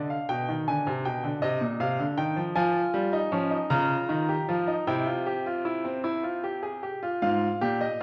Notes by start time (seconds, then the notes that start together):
Already playing: D3
0.10 F5
0.29 B2 G5
0.49 D#3
0.68 D3 G#5
0.87 C3
1.05 B2 G5
1.24 D3
1.42 C3 D#5
1.61 A#2
1.80 C3 F5
1.99 D3
2.18 D#3 G5
2.36 F3
2.56 F3 F4 G#5
2.94 G3
3.13 D#4
3.32 F3 C#4
3.51 D#4
3.70 C#3 F4 A#5
4.09 D#3
4.29 G4
4.48 F3 F4
4.67 D#4
4.87 C3 E4 G5
5.06 F4
5.26 G4
5.46 F4
5.65 E4
5.85 C4
6.04 E4
6.23 F4
6.44 G4
6.63 G#4
6.83 G4
7.02 F4
7.22 G#2 F4 F5
7.61 A#2 G4
7.81 D#5